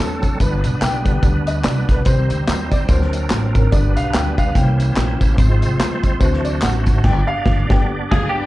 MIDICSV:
0, 0, Header, 1, 7, 480
1, 0, Start_track
1, 0, Tempo, 414938
1, 465, Time_signature, 4, 2, 24, 8
1, 9788, End_track
2, 0, Start_track
2, 0, Title_t, "Clean electric guitar"
2, 0, Program_c, 0, 27
2, 9385, Note_on_c, 0, 68, 80
2, 9588, Note_off_c, 0, 68, 0
2, 9593, Note_on_c, 0, 67, 91
2, 9668, Note_off_c, 0, 67, 0
2, 9788, End_track
3, 0, Start_track
3, 0, Title_t, "Grand piano"
3, 0, Program_c, 1, 0
3, 0, Note_on_c, 1, 69, 101
3, 418, Note_off_c, 1, 69, 0
3, 464, Note_on_c, 1, 71, 90
3, 911, Note_off_c, 1, 71, 0
3, 947, Note_on_c, 1, 79, 102
3, 1204, Note_on_c, 1, 50, 51
3, 1214, Note_on_c, 1, 55, 45
3, 1223, Note_on_c, 1, 59, 55
3, 1393, Note_off_c, 1, 79, 0
3, 1510, Note_off_c, 1, 50, 0
3, 1516, Note_off_c, 1, 55, 0
3, 1520, Note_off_c, 1, 59, 0
3, 1706, Note_on_c, 1, 75, 81
3, 1900, Note_on_c, 1, 74, 91
3, 1911, Note_off_c, 1, 75, 0
3, 2200, Note_off_c, 1, 74, 0
3, 2219, Note_on_c, 1, 71, 80
3, 2371, Note_on_c, 1, 51, 51
3, 2380, Note_on_c, 1, 55, 48
3, 2380, Note_on_c, 1, 72, 92
3, 2387, Note_off_c, 1, 71, 0
3, 2387, Note_on_c, 1, 60, 55
3, 2720, Note_off_c, 1, 51, 0
3, 2725, Note_off_c, 1, 55, 0
3, 2729, Note_off_c, 1, 60, 0
3, 3097, Note_off_c, 1, 72, 0
3, 3143, Note_on_c, 1, 74, 94
3, 3338, Note_on_c, 1, 54, 53
3, 3344, Note_on_c, 1, 58, 47
3, 3347, Note_on_c, 1, 72, 87
3, 3350, Note_off_c, 1, 74, 0
3, 3351, Note_on_c, 1, 60, 56
3, 4061, Note_off_c, 1, 72, 0
3, 4100, Note_on_c, 1, 70, 91
3, 4255, Note_off_c, 1, 54, 0
3, 4258, Note_off_c, 1, 58, 0
3, 4262, Note_off_c, 1, 60, 0
3, 4297, Note_on_c, 1, 55, 56
3, 4304, Note_on_c, 1, 74, 100
3, 4305, Note_on_c, 1, 59, 50
3, 4308, Note_off_c, 1, 70, 0
3, 4311, Note_on_c, 1, 62, 65
3, 4566, Note_off_c, 1, 74, 0
3, 4588, Note_on_c, 1, 77, 101
3, 4772, Note_off_c, 1, 77, 0
3, 4782, Note_on_c, 1, 79, 88
3, 4976, Note_off_c, 1, 79, 0
3, 4994, Note_on_c, 1, 79, 70
3, 5065, Note_off_c, 1, 79, 0
3, 5067, Note_on_c, 1, 77, 97
3, 5215, Note_off_c, 1, 55, 0
3, 5218, Note_off_c, 1, 59, 0
3, 5222, Note_off_c, 1, 62, 0
3, 5255, Note_on_c, 1, 52, 52
3, 5259, Note_on_c, 1, 58, 49
3, 5264, Note_on_c, 1, 79, 82
3, 5268, Note_on_c, 1, 61, 58
3, 5271, Note_off_c, 1, 77, 0
3, 5979, Note_off_c, 1, 79, 0
3, 6173, Note_off_c, 1, 52, 0
3, 6175, Note_off_c, 1, 58, 0
3, 6180, Note_off_c, 1, 61, 0
3, 6210, Note_on_c, 1, 53, 50
3, 6221, Note_on_c, 1, 56, 49
3, 6225, Note_on_c, 1, 60, 62
3, 6939, Note_off_c, 1, 53, 0
3, 6945, Note_off_c, 1, 56, 0
3, 6947, Note_off_c, 1, 60, 0
3, 7165, Note_on_c, 1, 52, 55
3, 7173, Note_on_c, 1, 72, 85
3, 7177, Note_on_c, 1, 54, 49
3, 7182, Note_on_c, 1, 60, 62
3, 7440, Note_off_c, 1, 72, 0
3, 7456, Note_on_c, 1, 74, 90
3, 7514, Note_off_c, 1, 74, 0
3, 7652, Note_on_c, 1, 78, 97
3, 8088, Note_off_c, 1, 52, 0
3, 8094, Note_off_c, 1, 54, 0
3, 8097, Note_off_c, 1, 60, 0
3, 8141, Note_on_c, 1, 79, 105
3, 8152, Note_off_c, 1, 78, 0
3, 8415, Note_on_c, 1, 77, 119
3, 8432, Note_off_c, 1, 79, 0
3, 8892, Note_on_c, 1, 50, 59
3, 8900, Note_on_c, 1, 55, 47
3, 8906, Note_on_c, 1, 59, 62
3, 8907, Note_on_c, 1, 79, 94
3, 8915, Note_off_c, 1, 77, 0
3, 9092, Note_off_c, 1, 79, 0
3, 9194, Note_off_c, 1, 50, 0
3, 9199, Note_off_c, 1, 55, 0
3, 9202, Note_off_c, 1, 59, 0
3, 9392, Note_on_c, 1, 77, 92
3, 9592, Note_on_c, 1, 79, 84
3, 9594, Note_off_c, 1, 77, 0
3, 9788, Note_off_c, 1, 79, 0
3, 9788, End_track
4, 0, Start_track
4, 0, Title_t, "String section"
4, 0, Program_c, 2, 48
4, 9390, Note_on_c, 2, 68, 84
4, 9573, Note_off_c, 2, 68, 0
4, 9588, Note_on_c, 2, 67, 83
4, 9591, Note_on_c, 2, 59, 70
4, 9594, Note_on_c, 2, 62, 67
4, 9788, Note_off_c, 2, 59, 0
4, 9788, Note_off_c, 2, 62, 0
4, 9788, Note_off_c, 2, 67, 0
4, 9788, End_track
5, 0, Start_track
5, 0, Title_t, "Tonewheel organ"
5, 0, Program_c, 3, 16
5, 0, Note_on_c, 3, 54, 67
5, 0, Note_on_c, 3, 60, 67
5, 0, Note_on_c, 3, 62, 68
5, 0, Note_on_c, 3, 69, 78
5, 442, Note_off_c, 3, 60, 0
5, 444, Note_off_c, 3, 54, 0
5, 446, Note_off_c, 3, 62, 0
5, 447, Note_off_c, 3, 69, 0
5, 462, Note_on_c, 3, 62, 53
5, 464, Note_on_c, 3, 55, 66
5, 465, Note_on_c, 3, 71, 68
5, 467, Note_on_c, 3, 59, 54
5, 2346, Note_off_c, 3, 55, 0
5, 2346, Note_off_c, 3, 62, 0
5, 2347, Note_off_c, 3, 71, 0
5, 2348, Note_off_c, 3, 59, 0
5, 2370, Note_on_c, 3, 60, 55
5, 2375, Note_on_c, 3, 63, 55
5, 2378, Note_on_c, 3, 71, 51
5, 2379, Note_on_c, 3, 55, 67
5, 2434, Note_on_c, 3, 72, 65
5, 2449, Note_off_c, 3, 71, 0
5, 3318, Note_off_c, 3, 60, 0
5, 3321, Note_off_c, 3, 63, 0
5, 3323, Note_off_c, 3, 55, 0
5, 3337, Note_on_c, 3, 60, 54
5, 3338, Note_on_c, 3, 70, 69
5, 3341, Note_on_c, 3, 62, 56
5, 3342, Note_on_c, 3, 53, 47
5, 3351, Note_off_c, 3, 72, 0
5, 3397, Note_on_c, 3, 54, 64
5, 3411, Note_off_c, 3, 53, 0
5, 4282, Note_off_c, 3, 60, 0
5, 4282, Note_off_c, 3, 70, 0
5, 4284, Note_off_c, 3, 62, 0
5, 4297, Note_on_c, 3, 59, 55
5, 4297, Note_on_c, 3, 68, 56
5, 4300, Note_on_c, 3, 55, 62
5, 4303, Note_on_c, 3, 62, 59
5, 4312, Note_off_c, 3, 54, 0
5, 4358, Note_on_c, 3, 71, 69
5, 4368, Note_off_c, 3, 68, 0
5, 5241, Note_off_c, 3, 59, 0
5, 5243, Note_off_c, 3, 55, 0
5, 5244, Note_off_c, 3, 62, 0
5, 5264, Note_on_c, 3, 72, 65
5, 5266, Note_on_c, 3, 64, 51
5, 5268, Note_on_c, 3, 61, 53
5, 5269, Note_on_c, 3, 58, 60
5, 5272, Note_off_c, 3, 71, 0
5, 6204, Note_off_c, 3, 72, 0
5, 6206, Note_off_c, 3, 64, 0
5, 6207, Note_off_c, 3, 58, 0
5, 6207, Note_off_c, 3, 61, 0
5, 6237, Note_on_c, 3, 72, 86
5, 6239, Note_on_c, 3, 65, 70
5, 6242, Note_on_c, 3, 56, 69
5, 6242, Note_on_c, 3, 60, 69
5, 7171, Note_off_c, 3, 72, 0
5, 7172, Note_off_c, 3, 65, 0
5, 7174, Note_off_c, 3, 56, 0
5, 7174, Note_off_c, 3, 60, 0
5, 7192, Note_on_c, 3, 62, 55
5, 7194, Note_on_c, 3, 66, 55
5, 7196, Note_on_c, 3, 57, 58
5, 7197, Note_on_c, 3, 71, 55
5, 7252, Note_on_c, 3, 72, 68
5, 7258, Note_off_c, 3, 71, 0
5, 8129, Note_off_c, 3, 62, 0
5, 8130, Note_off_c, 3, 66, 0
5, 8131, Note_off_c, 3, 57, 0
5, 8153, Note_on_c, 3, 74, 71
5, 8154, Note_on_c, 3, 59, 66
5, 8154, Note_on_c, 3, 67, 54
5, 8159, Note_off_c, 3, 72, 0
5, 8159, Note_on_c, 3, 62, 60
5, 9788, Note_off_c, 3, 59, 0
5, 9788, Note_off_c, 3, 62, 0
5, 9788, Note_off_c, 3, 67, 0
5, 9788, Note_off_c, 3, 74, 0
5, 9788, End_track
6, 0, Start_track
6, 0, Title_t, "Upright bass"
6, 0, Program_c, 4, 32
6, 0, Note_on_c, 4, 40, 84
6, 395, Note_off_c, 4, 40, 0
6, 465, Note_on_c, 4, 31, 100
6, 704, Note_off_c, 4, 31, 0
6, 744, Note_on_c, 4, 35, 86
6, 914, Note_off_c, 4, 35, 0
6, 941, Note_on_c, 4, 35, 90
6, 1351, Note_off_c, 4, 35, 0
6, 1421, Note_on_c, 4, 38, 102
6, 1831, Note_off_c, 4, 38, 0
6, 1903, Note_on_c, 4, 36, 80
6, 2143, Note_off_c, 4, 36, 0
6, 2184, Note_on_c, 4, 35, 84
6, 2354, Note_off_c, 4, 35, 0
6, 2386, Note_on_c, 4, 36, 97
6, 2625, Note_off_c, 4, 36, 0
6, 2666, Note_on_c, 4, 38, 91
6, 2835, Note_off_c, 4, 38, 0
6, 2867, Note_on_c, 4, 39, 70
6, 3274, Note_off_c, 4, 39, 0
6, 3340, Note_on_c, 4, 38, 87
6, 3750, Note_off_c, 4, 38, 0
6, 3825, Note_on_c, 4, 33, 80
6, 4064, Note_off_c, 4, 33, 0
6, 4110, Note_on_c, 4, 32, 91
6, 4278, Note_off_c, 4, 32, 0
6, 4311, Note_on_c, 4, 31, 95
6, 4547, Note_off_c, 4, 31, 0
6, 4591, Note_on_c, 4, 35, 88
6, 4758, Note_off_c, 4, 35, 0
6, 4790, Note_on_c, 4, 38, 82
6, 5196, Note_off_c, 4, 38, 0
6, 5269, Note_on_c, 4, 36, 103
6, 5675, Note_off_c, 4, 36, 0
6, 5744, Note_on_c, 4, 34, 100
6, 5983, Note_off_c, 4, 34, 0
6, 6026, Note_on_c, 4, 33, 92
6, 6195, Note_off_c, 4, 33, 0
6, 6227, Note_on_c, 4, 32, 106
6, 6465, Note_off_c, 4, 32, 0
6, 6510, Note_on_c, 4, 36, 84
6, 6677, Note_off_c, 4, 36, 0
6, 6706, Note_on_c, 4, 39, 85
6, 7113, Note_off_c, 4, 39, 0
6, 7180, Note_on_c, 4, 38, 91
6, 7590, Note_off_c, 4, 38, 0
6, 7666, Note_on_c, 4, 33, 94
6, 7904, Note_off_c, 4, 33, 0
6, 7947, Note_on_c, 4, 32, 92
6, 8115, Note_off_c, 4, 32, 0
6, 8143, Note_on_c, 4, 31, 104
6, 8335, Note_off_c, 4, 31, 0
6, 8624, Note_on_c, 4, 31, 104
6, 8815, Note_off_c, 4, 31, 0
6, 8908, Note_on_c, 4, 31, 89
6, 9042, Note_off_c, 4, 31, 0
6, 9389, Note_on_c, 4, 31, 96
6, 9523, Note_off_c, 4, 31, 0
6, 9788, End_track
7, 0, Start_track
7, 0, Title_t, "Drums"
7, 261, Note_on_c, 9, 54, 52
7, 265, Note_on_c, 9, 36, 68
7, 274, Note_on_c, 9, 42, 71
7, 376, Note_off_c, 9, 54, 0
7, 381, Note_off_c, 9, 36, 0
7, 389, Note_off_c, 9, 42, 0
7, 464, Note_on_c, 9, 36, 81
7, 464, Note_on_c, 9, 42, 91
7, 472, Note_on_c, 9, 54, 78
7, 580, Note_off_c, 9, 36, 0
7, 580, Note_off_c, 9, 42, 0
7, 587, Note_off_c, 9, 54, 0
7, 739, Note_on_c, 9, 42, 83
7, 745, Note_on_c, 9, 54, 51
7, 855, Note_off_c, 9, 42, 0
7, 861, Note_off_c, 9, 54, 0
7, 949, Note_on_c, 9, 38, 93
7, 949, Note_on_c, 9, 42, 88
7, 951, Note_on_c, 9, 39, 91
7, 951, Note_on_c, 9, 54, 102
7, 1064, Note_off_c, 9, 38, 0
7, 1065, Note_off_c, 9, 42, 0
7, 1066, Note_off_c, 9, 39, 0
7, 1066, Note_off_c, 9, 54, 0
7, 1221, Note_on_c, 9, 36, 79
7, 1221, Note_on_c, 9, 42, 69
7, 1223, Note_on_c, 9, 54, 47
7, 1337, Note_off_c, 9, 36, 0
7, 1337, Note_off_c, 9, 42, 0
7, 1338, Note_off_c, 9, 54, 0
7, 1418, Note_on_c, 9, 54, 66
7, 1420, Note_on_c, 9, 36, 97
7, 1422, Note_on_c, 9, 42, 73
7, 1534, Note_off_c, 9, 54, 0
7, 1536, Note_off_c, 9, 36, 0
7, 1538, Note_off_c, 9, 42, 0
7, 1700, Note_on_c, 9, 42, 80
7, 1710, Note_on_c, 9, 54, 53
7, 1816, Note_off_c, 9, 42, 0
7, 1825, Note_off_c, 9, 54, 0
7, 1897, Note_on_c, 9, 42, 83
7, 1900, Note_on_c, 9, 38, 102
7, 1902, Note_on_c, 9, 39, 88
7, 1902, Note_on_c, 9, 54, 83
7, 2012, Note_off_c, 9, 42, 0
7, 2016, Note_off_c, 9, 38, 0
7, 2018, Note_off_c, 9, 39, 0
7, 2018, Note_off_c, 9, 54, 0
7, 2181, Note_on_c, 9, 54, 53
7, 2184, Note_on_c, 9, 36, 75
7, 2186, Note_on_c, 9, 42, 64
7, 2189, Note_on_c, 9, 38, 27
7, 2297, Note_off_c, 9, 54, 0
7, 2299, Note_off_c, 9, 36, 0
7, 2301, Note_off_c, 9, 42, 0
7, 2305, Note_off_c, 9, 38, 0
7, 2373, Note_on_c, 9, 42, 88
7, 2383, Note_on_c, 9, 36, 96
7, 2387, Note_on_c, 9, 54, 75
7, 2489, Note_off_c, 9, 42, 0
7, 2498, Note_off_c, 9, 36, 0
7, 2503, Note_off_c, 9, 54, 0
7, 2661, Note_on_c, 9, 42, 84
7, 2668, Note_on_c, 9, 54, 52
7, 2776, Note_off_c, 9, 42, 0
7, 2783, Note_off_c, 9, 54, 0
7, 2865, Note_on_c, 9, 38, 103
7, 2866, Note_on_c, 9, 42, 84
7, 2876, Note_on_c, 9, 39, 93
7, 2876, Note_on_c, 9, 54, 98
7, 2981, Note_off_c, 9, 38, 0
7, 2981, Note_off_c, 9, 42, 0
7, 2992, Note_off_c, 9, 39, 0
7, 2992, Note_off_c, 9, 54, 0
7, 3140, Note_on_c, 9, 42, 82
7, 3142, Note_on_c, 9, 36, 86
7, 3147, Note_on_c, 9, 54, 50
7, 3256, Note_off_c, 9, 42, 0
7, 3258, Note_off_c, 9, 36, 0
7, 3263, Note_off_c, 9, 54, 0
7, 3337, Note_on_c, 9, 54, 64
7, 3340, Note_on_c, 9, 36, 100
7, 3341, Note_on_c, 9, 42, 83
7, 3452, Note_off_c, 9, 54, 0
7, 3456, Note_off_c, 9, 36, 0
7, 3457, Note_off_c, 9, 42, 0
7, 3492, Note_on_c, 9, 38, 30
7, 3607, Note_off_c, 9, 38, 0
7, 3621, Note_on_c, 9, 42, 85
7, 3626, Note_on_c, 9, 54, 53
7, 3737, Note_off_c, 9, 42, 0
7, 3742, Note_off_c, 9, 54, 0
7, 3821, Note_on_c, 9, 39, 84
7, 3821, Note_on_c, 9, 42, 81
7, 3821, Note_on_c, 9, 54, 85
7, 3824, Note_on_c, 9, 38, 99
7, 3936, Note_off_c, 9, 39, 0
7, 3936, Note_off_c, 9, 42, 0
7, 3936, Note_off_c, 9, 54, 0
7, 3940, Note_off_c, 9, 38, 0
7, 4106, Note_on_c, 9, 54, 54
7, 4107, Note_on_c, 9, 36, 80
7, 4108, Note_on_c, 9, 42, 62
7, 4221, Note_off_c, 9, 54, 0
7, 4223, Note_off_c, 9, 36, 0
7, 4224, Note_off_c, 9, 42, 0
7, 4308, Note_on_c, 9, 42, 94
7, 4309, Note_on_c, 9, 36, 91
7, 4311, Note_on_c, 9, 54, 74
7, 4423, Note_off_c, 9, 42, 0
7, 4425, Note_off_c, 9, 36, 0
7, 4427, Note_off_c, 9, 54, 0
7, 4589, Note_on_c, 9, 42, 81
7, 4590, Note_on_c, 9, 54, 61
7, 4705, Note_off_c, 9, 42, 0
7, 4706, Note_off_c, 9, 54, 0
7, 4794, Note_on_c, 9, 38, 104
7, 4795, Note_on_c, 9, 42, 98
7, 4796, Note_on_c, 9, 39, 106
7, 4796, Note_on_c, 9, 54, 94
7, 4910, Note_off_c, 9, 38, 0
7, 4910, Note_off_c, 9, 42, 0
7, 4912, Note_off_c, 9, 39, 0
7, 4912, Note_off_c, 9, 54, 0
7, 5068, Note_on_c, 9, 36, 81
7, 5070, Note_on_c, 9, 42, 72
7, 5076, Note_on_c, 9, 54, 49
7, 5183, Note_off_c, 9, 36, 0
7, 5186, Note_off_c, 9, 42, 0
7, 5192, Note_off_c, 9, 54, 0
7, 5267, Note_on_c, 9, 36, 88
7, 5268, Note_on_c, 9, 54, 68
7, 5278, Note_on_c, 9, 42, 81
7, 5382, Note_off_c, 9, 36, 0
7, 5384, Note_off_c, 9, 54, 0
7, 5394, Note_off_c, 9, 42, 0
7, 5551, Note_on_c, 9, 42, 79
7, 5553, Note_on_c, 9, 54, 53
7, 5666, Note_off_c, 9, 42, 0
7, 5669, Note_off_c, 9, 54, 0
7, 5743, Note_on_c, 9, 39, 84
7, 5743, Note_on_c, 9, 54, 81
7, 5746, Note_on_c, 9, 42, 87
7, 5749, Note_on_c, 9, 38, 102
7, 5859, Note_off_c, 9, 39, 0
7, 5859, Note_off_c, 9, 54, 0
7, 5861, Note_off_c, 9, 42, 0
7, 5865, Note_off_c, 9, 38, 0
7, 6026, Note_on_c, 9, 36, 75
7, 6026, Note_on_c, 9, 54, 57
7, 6028, Note_on_c, 9, 42, 65
7, 6032, Note_on_c, 9, 38, 29
7, 6141, Note_off_c, 9, 54, 0
7, 6142, Note_off_c, 9, 36, 0
7, 6144, Note_off_c, 9, 42, 0
7, 6148, Note_off_c, 9, 38, 0
7, 6226, Note_on_c, 9, 36, 104
7, 6226, Note_on_c, 9, 42, 99
7, 6234, Note_on_c, 9, 54, 72
7, 6342, Note_off_c, 9, 36, 0
7, 6342, Note_off_c, 9, 42, 0
7, 6350, Note_off_c, 9, 54, 0
7, 6504, Note_on_c, 9, 42, 81
7, 6512, Note_on_c, 9, 54, 56
7, 6620, Note_off_c, 9, 42, 0
7, 6627, Note_off_c, 9, 54, 0
7, 6707, Note_on_c, 9, 38, 114
7, 6708, Note_on_c, 9, 42, 97
7, 6718, Note_on_c, 9, 39, 90
7, 6718, Note_on_c, 9, 54, 100
7, 6823, Note_off_c, 9, 38, 0
7, 6824, Note_off_c, 9, 42, 0
7, 6834, Note_off_c, 9, 39, 0
7, 6834, Note_off_c, 9, 54, 0
7, 6980, Note_on_c, 9, 42, 74
7, 6982, Note_on_c, 9, 36, 87
7, 6988, Note_on_c, 9, 54, 50
7, 7096, Note_off_c, 9, 42, 0
7, 7098, Note_off_c, 9, 36, 0
7, 7104, Note_off_c, 9, 54, 0
7, 7179, Note_on_c, 9, 36, 100
7, 7179, Note_on_c, 9, 42, 74
7, 7181, Note_on_c, 9, 54, 69
7, 7294, Note_off_c, 9, 42, 0
7, 7295, Note_off_c, 9, 36, 0
7, 7296, Note_off_c, 9, 54, 0
7, 7325, Note_on_c, 9, 38, 35
7, 7440, Note_off_c, 9, 38, 0
7, 7459, Note_on_c, 9, 42, 79
7, 7463, Note_on_c, 9, 54, 55
7, 7575, Note_off_c, 9, 42, 0
7, 7579, Note_off_c, 9, 54, 0
7, 7657, Note_on_c, 9, 39, 93
7, 7657, Note_on_c, 9, 54, 88
7, 7662, Note_on_c, 9, 42, 79
7, 7666, Note_on_c, 9, 38, 104
7, 7772, Note_off_c, 9, 39, 0
7, 7772, Note_off_c, 9, 54, 0
7, 7778, Note_off_c, 9, 42, 0
7, 7782, Note_off_c, 9, 38, 0
7, 7937, Note_on_c, 9, 54, 55
7, 7944, Note_on_c, 9, 36, 72
7, 7947, Note_on_c, 9, 42, 70
7, 7951, Note_on_c, 9, 38, 34
7, 8053, Note_off_c, 9, 54, 0
7, 8060, Note_off_c, 9, 36, 0
7, 8063, Note_off_c, 9, 42, 0
7, 8067, Note_off_c, 9, 38, 0
7, 8144, Note_on_c, 9, 36, 99
7, 8144, Note_on_c, 9, 38, 90
7, 8144, Note_on_c, 9, 49, 73
7, 8259, Note_off_c, 9, 38, 0
7, 8259, Note_off_c, 9, 49, 0
7, 8260, Note_off_c, 9, 36, 0
7, 8624, Note_on_c, 9, 38, 106
7, 8625, Note_on_c, 9, 36, 99
7, 8740, Note_off_c, 9, 38, 0
7, 8741, Note_off_c, 9, 36, 0
7, 8908, Note_on_c, 9, 36, 102
7, 8908, Note_on_c, 9, 38, 105
7, 9023, Note_off_c, 9, 36, 0
7, 9024, Note_off_c, 9, 38, 0
7, 9389, Note_on_c, 9, 36, 108
7, 9394, Note_on_c, 9, 38, 113
7, 9505, Note_off_c, 9, 36, 0
7, 9509, Note_off_c, 9, 38, 0
7, 9788, End_track
0, 0, End_of_file